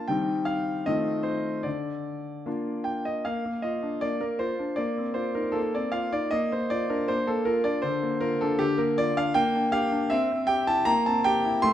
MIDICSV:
0, 0, Header, 1, 2, 480
1, 0, Start_track
1, 0, Key_signature, -2, "major"
1, 0, Tempo, 790514
1, 50, Time_signature, 2, 2, 24, 8
1, 2452, Tempo, 759494
1, 7314, End_track
2, 0, Start_track
2, 0, Title_t, "Grand piano"
2, 0, Program_c, 0, 0
2, 46, Note_on_c, 0, 79, 65
2, 51, Note_on_c, 0, 55, 40
2, 56, Note_on_c, 0, 51, 53
2, 60, Note_on_c, 0, 60, 38
2, 63, Note_on_c, 0, 63, 39
2, 163, Control_c, 0, 64, 127
2, 275, Note_on_c, 0, 77, 68
2, 282, Note_off_c, 0, 79, 0
2, 498, Note_off_c, 0, 55, 0
2, 503, Note_off_c, 0, 60, 0
2, 504, Note_off_c, 0, 63, 0
2, 511, Note_off_c, 0, 51, 0
2, 517, Note_off_c, 0, 77, 0
2, 522, Note_on_c, 0, 75, 76
2, 529, Note_on_c, 0, 51, 54
2, 529, Note_on_c, 0, 60, 41
2, 530, Control_c, 0, 64, 0
2, 530, Note_on_c, 0, 57, 39
2, 536, Note_on_c, 0, 65, 38
2, 629, Control_c, 0, 64, 127
2, 747, Note_on_c, 0, 72, 61
2, 763, Note_off_c, 0, 75, 0
2, 986, Note_off_c, 0, 57, 0
2, 986, Note_off_c, 0, 60, 0
2, 990, Note_off_c, 0, 65, 0
2, 991, Note_on_c, 0, 74, 58
2, 996, Note_off_c, 0, 51, 0
2, 997, Note_on_c, 0, 50, 45
2, 999, Note_off_c, 0, 72, 0
2, 1012, Control_c, 0, 64, 0
2, 1140, Control_c, 0, 64, 127
2, 1478, Note_off_c, 0, 50, 0
2, 1493, Note_on_c, 0, 58, 37
2, 1497, Note_on_c, 0, 62, 38
2, 1500, Note_on_c, 0, 65, 39
2, 1505, Control_c, 0, 64, 0
2, 1725, Note_on_c, 0, 79, 60
2, 1734, Note_off_c, 0, 74, 0
2, 1854, Note_on_c, 0, 75, 62
2, 1855, Note_off_c, 0, 79, 0
2, 1956, Note_off_c, 0, 58, 0
2, 1957, Note_off_c, 0, 62, 0
2, 1959, Note_off_c, 0, 65, 0
2, 1972, Note_on_c, 0, 77, 66
2, 1978, Note_off_c, 0, 75, 0
2, 1980, Note_on_c, 0, 58, 48
2, 2089, Note_off_c, 0, 58, 0
2, 2098, Note_on_c, 0, 58, 34
2, 2119, Control_c, 0, 64, 127
2, 2200, Note_on_c, 0, 75, 63
2, 2210, Note_on_c, 0, 65, 35
2, 2214, Note_off_c, 0, 77, 0
2, 2288, Note_off_c, 0, 58, 0
2, 2324, Note_on_c, 0, 62, 36
2, 2402, Note_off_c, 0, 65, 0
2, 2436, Note_on_c, 0, 74, 75
2, 2439, Note_on_c, 0, 58, 44
2, 2444, Note_off_c, 0, 75, 0
2, 2461, Control_c, 0, 64, 0
2, 2519, Note_off_c, 0, 62, 0
2, 2553, Note_off_c, 0, 58, 0
2, 2557, Note_on_c, 0, 70, 62
2, 2562, Note_on_c, 0, 58, 36
2, 2565, Note_off_c, 0, 74, 0
2, 2674, Note_on_c, 0, 72, 68
2, 2681, Note_on_c, 0, 65, 42
2, 2686, Note_off_c, 0, 70, 0
2, 2761, Note_off_c, 0, 58, 0
2, 2803, Note_on_c, 0, 62, 39
2, 2880, Note_off_c, 0, 65, 0
2, 2908, Note_on_c, 0, 74, 66
2, 2920, Note_on_c, 0, 58, 51
2, 2925, Note_off_c, 0, 72, 0
2, 2930, Note_off_c, 0, 62, 0
2, 3045, Note_on_c, 0, 60, 33
2, 3068, Control_c, 0, 64, 127
2, 3148, Note_on_c, 0, 72, 67
2, 3160, Note_on_c, 0, 65, 40
2, 3163, Note_off_c, 0, 74, 0
2, 3244, Note_off_c, 0, 60, 0
2, 3279, Note_on_c, 0, 70, 63
2, 3284, Note_off_c, 0, 72, 0
2, 3286, Note_on_c, 0, 63, 39
2, 3363, Note_off_c, 0, 65, 0
2, 3387, Note_off_c, 0, 58, 0
2, 3388, Note_on_c, 0, 69, 71
2, 3397, Note_on_c, 0, 58, 47
2, 3410, Note_off_c, 0, 70, 0
2, 3428, Control_c, 0, 64, 0
2, 3487, Note_off_c, 0, 63, 0
2, 3526, Note_off_c, 0, 69, 0
2, 3529, Note_on_c, 0, 60, 38
2, 3532, Note_on_c, 0, 74, 63
2, 3639, Note_on_c, 0, 77, 74
2, 3647, Note_on_c, 0, 65, 44
2, 3659, Note_off_c, 0, 74, 0
2, 3730, Note_off_c, 0, 60, 0
2, 3770, Note_on_c, 0, 63, 41
2, 3771, Note_on_c, 0, 74, 74
2, 3772, Note_off_c, 0, 77, 0
2, 3849, Note_off_c, 0, 65, 0
2, 3879, Note_off_c, 0, 58, 0
2, 3885, Note_on_c, 0, 75, 79
2, 3897, Note_on_c, 0, 58, 56
2, 3898, Note_off_c, 0, 63, 0
2, 3899, Note_off_c, 0, 74, 0
2, 4014, Note_off_c, 0, 58, 0
2, 4016, Note_off_c, 0, 75, 0
2, 4022, Note_on_c, 0, 72, 63
2, 4023, Note_on_c, 0, 58, 39
2, 4039, Control_c, 0, 64, 127
2, 4135, Note_on_c, 0, 74, 77
2, 4142, Note_on_c, 0, 65, 41
2, 4145, Note_off_c, 0, 72, 0
2, 4217, Note_off_c, 0, 58, 0
2, 4258, Note_on_c, 0, 70, 66
2, 4259, Note_on_c, 0, 62, 46
2, 4261, Note_off_c, 0, 74, 0
2, 4338, Note_off_c, 0, 65, 0
2, 4375, Note_on_c, 0, 72, 81
2, 4383, Note_on_c, 0, 58, 54
2, 4384, Note_off_c, 0, 70, 0
2, 4396, Control_c, 0, 64, 0
2, 4456, Note_off_c, 0, 62, 0
2, 4490, Note_off_c, 0, 58, 0
2, 4496, Note_on_c, 0, 69, 75
2, 4499, Note_on_c, 0, 58, 45
2, 4502, Note_off_c, 0, 72, 0
2, 4609, Note_on_c, 0, 70, 75
2, 4619, Note_on_c, 0, 65, 44
2, 4623, Note_off_c, 0, 69, 0
2, 4696, Note_off_c, 0, 58, 0
2, 4728, Note_on_c, 0, 74, 76
2, 4732, Note_on_c, 0, 62, 47
2, 4739, Note_off_c, 0, 70, 0
2, 4815, Note_off_c, 0, 65, 0
2, 4841, Note_on_c, 0, 72, 79
2, 4850, Note_on_c, 0, 50, 59
2, 4858, Note_off_c, 0, 74, 0
2, 4860, Note_off_c, 0, 62, 0
2, 4975, Note_on_c, 0, 58, 42
2, 4980, Control_c, 0, 64, 127
2, 5086, Note_on_c, 0, 70, 82
2, 5092, Note_off_c, 0, 72, 0
2, 5095, Note_on_c, 0, 65, 49
2, 5171, Note_off_c, 0, 58, 0
2, 5214, Note_off_c, 0, 70, 0
2, 5215, Note_on_c, 0, 69, 80
2, 5222, Note_on_c, 0, 62, 48
2, 5290, Note_off_c, 0, 65, 0
2, 5323, Note_off_c, 0, 50, 0
2, 5327, Note_on_c, 0, 67, 92
2, 5333, Note_on_c, 0, 50, 57
2, 5338, Note_off_c, 0, 69, 0
2, 5347, Control_c, 0, 64, 0
2, 5414, Note_off_c, 0, 62, 0
2, 5448, Note_on_c, 0, 70, 79
2, 5449, Note_on_c, 0, 58, 49
2, 5454, Note_off_c, 0, 67, 0
2, 5575, Note_off_c, 0, 70, 0
2, 5575, Note_on_c, 0, 74, 92
2, 5580, Note_on_c, 0, 65, 51
2, 5648, Note_off_c, 0, 58, 0
2, 5695, Note_on_c, 0, 62, 52
2, 5696, Note_on_c, 0, 77, 90
2, 5698, Note_off_c, 0, 74, 0
2, 5773, Note_off_c, 0, 65, 0
2, 5802, Note_off_c, 0, 50, 0
2, 5805, Note_on_c, 0, 79, 98
2, 5813, Note_on_c, 0, 58, 69
2, 5818, Note_off_c, 0, 62, 0
2, 5819, Note_off_c, 0, 77, 0
2, 5925, Control_c, 0, 64, 127
2, 5936, Note_on_c, 0, 62, 47
2, 6043, Note_on_c, 0, 77, 90
2, 6046, Note_on_c, 0, 67, 51
2, 6052, Note_off_c, 0, 79, 0
2, 6129, Note_off_c, 0, 62, 0
2, 6169, Note_on_c, 0, 62, 54
2, 6244, Note_off_c, 0, 67, 0
2, 6280, Note_off_c, 0, 58, 0
2, 6281, Note_on_c, 0, 76, 103
2, 6288, Note_on_c, 0, 60, 71
2, 6290, Note_off_c, 0, 77, 0
2, 6294, Note_off_c, 0, 62, 0
2, 6306, Control_c, 0, 64, 0
2, 6412, Note_off_c, 0, 60, 0
2, 6422, Note_on_c, 0, 60, 50
2, 6427, Control_c, 0, 64, 127
2, 6516, Note_on_c, 0, 79, 97
2, 6526, Note_on_c, 0, 67, 54
2, 6529, Note_off_c, 0, 76, 0
2, 6611, Note_off_c, 0, 60, 0
2, 6644, Note_on_c, 0, 64, 56
2, 6646, Note_off_c, 0, 79, 0
2, 6646, Note_on_c, 0, 81, 98
2, 6723, Note_off_c, 0, 67, 0
2, 6759, Note_on_c, 0, 82, 109
2, 6766, Note_on_c, 0, 58, 67
2, 6770, Note_off_c, 0, 64, 0
2, 6771, Note_off_c, 0, 81, 0
2, 6786, Control_c, 0, 64, 0
2, 6882, Control_c, 0, 64, 127
2, 6887, Note_off_c, 0, 82, 0
2, 6891, Note_on_c, 0, 60, 48
2, 6891, Note_on_c, 0, 81, 83
2, 7006, Note_on_c, 0, 79, 99
2, 7013, Note_off_c, 0, 81, 0
2, 7016, Note_on_c, 0, 67, 55
2, 7084, Note_off_c, 0, 60, 0
2, 7135, Note_on_c, 0, 64, 55
2, 7206, Note_off_c, 0, 67, 0
2, 7234, Note_off_c, 0, 58, 0
2, 7245, Note_on_c, 0, 84, 112
2, 7249, Note_off_c, 0, 79, 0
2, 7252, Note_on_c, 0, 57, 74
2, 7254, Note_off_c, 0, 64, 0
2, 7261, Control_c, 0, 64, 0
2, 7314, Note_off_c, 0, 57, 0
2, 7314, Note_off_c, 0, 84, 0
2, 7314, End_track
0, 0, End_of_file